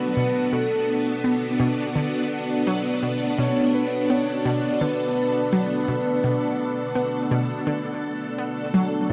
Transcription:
0.00 9.13 B3 medium
0.00 9.10 D4 medium
0.00 9.13 F#4 medium
0.00 9.13 A4 medium
0.00 0.48 B4 medium
0.00 9.11 F#5 medium
0.17 0.49 B2 medium
0.52 0.66 B2 medium
0.52 1.56 A4 medium
1.24 1.37 B3 medium
1.60 1.81 B2 medium
1.95 2.08 D3 medium
2.67 2.80 F#3 medium
3.02 3.35 B2 medium
3.38 3.51 B2 medium
3.38 3.76 C#5 loud
3.74 4.12 B4 loud
4.10 4.23 B3 medium
4.10 4.47 C#5 loud
4.45 4.67 B2 medium
4.45 4.83 D5 loud
4.81 4.94 D3 medium
4.81 8.38 B4 loud
5.53 5.65 F#3 medium
5.88 6.21 B2 medium
6.24 6.37 B2 medium
6.95 7.08 B3 medium
7.31 7.53 B2 loud
7.67 7.80 D3 medium
8.38 8.71 B3 medium
8.74 9.06 F#3 loud
9.10 9.13 A2 medium
9.10 9.13 C#5 loud

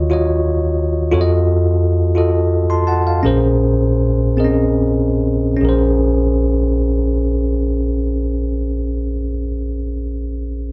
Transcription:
0.00 1.09 D#2 medium
0.00 1.09 D#3 medium
0.00 0.10 F4 medium
0.00 0.11 F#4 medium
0.00 0.12 C#5 medium
0.00 0.13 D#5 medium
0.10 0.97 F4 medium
0.10 0.98 F#4 medium
0.10 0.98 C#5 medium
0.10 0.99 D#5 medium
1.12 3.20 F2 medium
1.12 2.00 F4 medium
1.12 2.00 F#4 medium
1.12 2.01 A4 medium
1.12 1.20 C#5 medium
1.21 2.05 D#5 medium
2.15 3.07 F4 medium
2.15 3.07 F#4 medium
2.15 3.08 A4 medium
2.15 3.08 D#5 medium
2.70 2.86 A5 soft
2.70 2.87 C6 medium
2.87 3.05 F#5 medium
2.87 3.05 A5 medium
3.07 3.41 F5 medium
3.23 5.59 A#1 medium
3.23 5.59 A#2 medium
3.23 4.20 C#4 medium
3.23 4.21 G#4 medium
3.23 4.21 A#4 medium
3.23 4.22 C5 medium
4.37 4.45 C4 soft
4.37 5.43 G#4 soft
4.37 5.44 A#4 soft
4.37 5.44 D#5 medium
4.44 5.46 C#4 medium
5.57 9.08 C#4 medium
5.61 9.15 A#1 medium
5.61 9.13 G#4 medium
5.61 9.16 A#4 medium
5.69 9.20 C5 medium

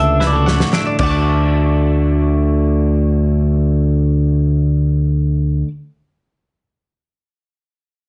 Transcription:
0.00 0.61 C#2 medium
0.00 1.00 D2 medium
0.00 0.73 D4 medium
0.00 0.20 F#4 medium
0.00 0.20 A4 medium
0.00 0.24 E5 medium
0.20 0.35 E4 medium
0.20 0.33 B4 medium
0.20 snare soft
0.27 0.79 D5 medium
0.33 1.00 F#4 soft
0.33 0.46 A4 medium
0.46 1.00 A2 medium
0.46 0.73 F#5 medium
0.46 snare medium
0.60 snare medium
0.73 0.96 D4 medium
0.73 0.86 E5 medium
0.73 snare medium
0.87 0.98 D5 medium
0.99 5.62 D2 medium
0.99 5.67 D2 medium
0.99 5.68 D3 medium
0.99 1.03 D5 medium
0.99 5.63 D5 medium
0.99 kick medium
0.99 crash medium
1.03 5.68 A3 medium
1.03 1.07 F#5 medium
1.03 5.70 A5 medium
1.09 5.71 F#4 medium
1.09 5.68 D6 medium

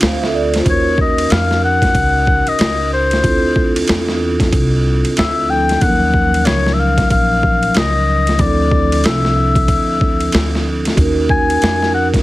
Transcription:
0.00 0.63 D2 medium
0.00 0.61 C4 medium
0.00 0.62 D4 medium
0.00 0.53 F4 medium
0.00 0.21 C5 medium
0.00 0.20 F5 medium
0.00 snare loud
0.00 hi-hat pedal medium
0.00 ride medium
0.22 0.34 A4 medium
0.22 0.33 E5 medium
0.22 snare soft
0.34 0.53 A4 medium
0.34 0.53 D5 medium
0.54 0.85 F4 medium
0.54 0.84 C5 medium
0.54 snare soft
0.54 ride medium
0.63 1.27 D#2 loud
0.63 3.19 C#4 medium
0.63 3.20 D#4 medium
0.63 3.19 F#4 medium
0.63 kick loud
0.63 ride medium
0.69 3.21 A#4 medium
0.69 0.98 C#5 medium
0.98 1.33 D#5 medium
0.98 kick medium
1.18 ride medium
1.30 1.92 F2 medium
1.30 1.63 F5 loud
1.30 snare loud
1.30 hi-hat pedal soft
1.30 ride medium
1.51 snare soft
1.65 2.50 F#5 loud
1.82 kick medium
1.82 snare soft
1.82 ride medium
1.95 2.44 C#2 medium
1.95 kick medium
1.95 ride medium
2.27 kick medium
2.47 2.92 D#5 loud
2.47 muted upright bass stroke soft
2.47 ride soft
2.59 3.21 C#2 medium
2.59 snare loud
2.59 hi-hat pedal soft
2.59 ride medium
2.93 3.85 C5 medium
3.11 snare soft
3.11 ride medium
3.21 3.85 D2 medium
3.21 5.45 C4 medium
3.21 5.46 D4 medium
3.21 5.44 F4 medium
3.21 kick loud
3.21 ride medium
3.25 5.46 E4 medium
3.25 5.47 A4 medium
3.56 kick medium
3.76 ride medium
3.88 4.50 E2 medium
3.88 snare loud
3.88 hi-hat pedal soft
3.88 ride medium
4.08 snare soft
4.40 kick medium
4.40 snare soft
4.40 ride medium
4.52 5.02 C2 medium
4.52 kick medium
4.52 ride medium
5.05 muted upright bass stroke soft
5.05 ride soft
5.17 5.79 D2 loud
5.17 5.52 E5 loud
5.17 snare loud
5.17 hi-hat pedal medium
5.17 ride medium
5.47 5.81 F3 soft
5.47 5.81 C4 soft
5.47 5.81 D4 soft
5.47 5.82 E4 soft
5.47 5.82 A4 soft
5.47 5.83 G5 loud
5.69 snare soft
5.69 ride medium
5.79 6.43 D#2 loud
5.79 8.36 F3 medium
5.79 8.34 F#3 medium
5.79 8.35 C#4 medium
5.79 8.35 D#4 medium
5.79 6.47 F#5 loud
5.79 kick loud
5.79 ride medium
5.84 8.37 A#4 medium
6.14 kick medium
6.34 ride medium
6.45 7.08 C#2 medium
6.45 6.75 C#5 medium
6.45 snare loud
6.45 hi-hat pedal soft
6.45 ride medium
6.66 snare soft
6.74 6.81 E5 medium
6.80 7.11 F5 loud
6.98 kick medium
6.98 snare soft
6.98 ride medium
7.10 7.72 A#1 medium
7.10 7.79 F5 loud
7.10 kick medium
7.10 ride medium
7.43 kick medium
7.63 ride soft
7.74 8.37 C#2 loud
7.74 8.43 D#5 loud
7.74 snare loud
7.74 hi-hat pedal medium
7.74 ride medium
8.27 snare soft
8.27 ride medium
8.37 9.01 D2 loud
8.37 10.93 F3 medium
8.37 10.93 C4 medium
8.37 10.94 D4 medium
8.37 10.95 E4 medium
8.37 kick loud
8.37 ride medium
8.41 10.95 A4 medium
8.41 9.07 D5 medium
8.72 kick loud
8.92 ride medium
9.04 9.66 C2 medium
9.04 10.66 E5 medium
9.04 snare loud
9.04 hi-hat pedal soft
9.04 ride medium
9.25 snare soft
9.55 kick medium
9.55 ride medium
9.68 10.30 D2 medium
9.68 kick medium
9.68 ride medium
10.01 kick medium
10.20 ride soft
10.32 10.95 D2 medium
10.32 snare loud
10.32 hi-hat pedal medium
10.32 ride medium
10.55 snare soft
10.85 snare soft
10.85 ride medium
10.95 11.59 D#2 loud
10.95 12.23 C#4 medium
10.95 12.23 D#4 medium
10.95 12.23 F#4 medium
10.95 kick medium
10.95 ride medium
11.00 12.23 A#4 medium
11.29 11.91 G#5 loud
11.29 kick medium
11.50 ride medium
11.62 12.23 F2 medium
11.62 snare loud
11.62 hi-hat pedal soft
11.62 ride medium
11.82 snare soft
11.94 12.09 F#5 medium
12.14 kick medium
12.14 snare soft
12.14 ride medium

